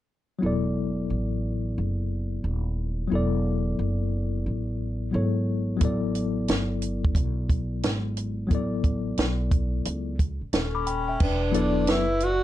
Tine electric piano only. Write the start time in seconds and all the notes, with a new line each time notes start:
0.39 F#3 B3 E4
0.45 A4 D5
3.08 F#3 B3
3.12 E4 A4 D5
5.12 F#3 B3 E4 A4 C#5
5.77 F#3 B3 E4
5.83 A4 D5
8.47 F#3 B3 E4
8.53 A4 D5
10.75 B5 D6
10.86 G5 B5
11.08 E5 G5
11.51 F#3 B3 E4 A4 D5